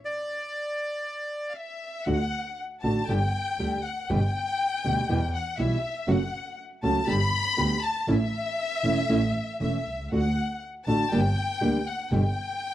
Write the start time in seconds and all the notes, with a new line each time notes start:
0.05 D5
1.49 F5
1.56 E5
2.06 D2 D3 A3 D4 F#4 F#5
2.83 A1 D3 A3 D4 F#4 A5
3.07 G1 D3 G3 D4 G4 G5
3.59 D2 D3 G3 D4 G4
3.86 F#5
4.09 G1 B2 D3 G3 B3 G4 G5
4.84 D2 B2 D3 G3 B3 G4
5.09 E2 B2 E3 G3 B3 E4
5.35 F#5
5.58 B1 B2 E3 G3 B3 E4 E5
6.07 F#1 C#3 F#3 A3 C#4 F#4 F#5
6.83 C#2 C#3 F#3 A3 C#4 F#4 A5
7.06 G1 D3 G3 B3 G4 B5
7.57 D2 D3 G3 B3 G4
7.83 A5
8.07 A1 E3 A3 C#4 E4 E5
8.83 E1 E3 A3 C#4 E4
9.09 A1 E3 A3 C#4 E4
9.60 E1 E3 A3 C#4 E4 E5
9.87 C2
10.12 D2 D3 A3 D4 F#4 F#5
10.86 A1 D3 A3 D4 F#4 A5
11.11 G1 D3 G3 A#3 D4 G4 G5
11.60 D2 D3 G3 A#3 D4 G4
11.88 F#5
12.11 G1 B2 D3 G3 B3 G4 G5